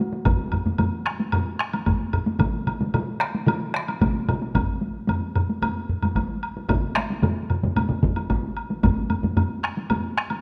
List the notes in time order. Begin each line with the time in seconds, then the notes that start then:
0.00 taiko high
0.13 taiko high
0.25 taiko, taiko low-mid, taiko high, high woodblock
0.52 taiko low-mid, taiko high, high woodblock
0.66 taiko low-mid, taiko high
0.78 taiko low-mid, taiko high, high woodblock
1.06 taiko rim, high woodblock
1.20 taiko high
1.32 taiko low-mid, taiko high, high woodblock
1.59 taiko rim
1.73 taiko high, high woodblock
1.86 taiko, taiko low-mid, taiko high, high woodblock
2.13 taiko low-mid, high woodblock
2.27 taiko high
2.40 taiko, taiko mid, taiko high, high woodblock
2.67 taiko mid, taiko high, high woodblock
2.81 taiko mid, taiko high
2.94 taiko mid, taiko high, high woodblock
3.21 taiko rim, high woodblock
3.35 taiko high
3.47 taiko mid, taiko high, high woodblock
3.74 taiko rim
3.88 taiko high, high woodblock
4.01 taiko, taiko mid, taiko high, high woodblock
4.28 taiko mid, high woodblock
4.42 taiko high
4.55 taiko, taiko low-mid, taiko high, high woodblock
4.82 taiko high
5.09 taiko low-mid, taiko high, high woodblock
5.36 taiko low-mid, high woodblock
5.49 taiko high
5.62 taiko low-mid, taiko high, high woodblock
5.89 taiko low-mid
6.02 taiko low-mid, taiko high, high woodblock
6.15 taiko, taiko high, high woodblock
6.43 high woodblock
6.57 taiko high
6.69 taiko, taiko low-mid, taiko mid, taiko high, high woodblock
6.96 taiko rim, taiko high, high woodblock
7.10 taiko high
7.23 taiko low-mid, taiko mid, taiko high, high woodblock
7.50 taiko low-mid, taiko mid, high woodblock
7.63 taiko low-mid, taiko mid, taiko high
7.76 taiko low-mid, taiko mid, taiko high, high woodblock
7.90 taiko low-mid, taiko mid
8.03 taiko, taiko low-mid, taiko mid
8.16 taiko high, high woodblock
8.30 taiko, taiko high, high woodblock
8.57 high woodblock
8.71 taiko high
8.83 taiko, taiko low-mid, taiko high, high woodblock
9.10 taiko low-mid, taiko high, high woodblock
9.24 taiko low-mid, taiko high
9.37 taiko low-mid, taiko high, high woodblock
9.63 taiko rim, high woodblock
9.77 taiko high
9.90 taiko low-mid, taiko high, high woodblock
10.18 taiko rim
10.30 taiko high, high woodblock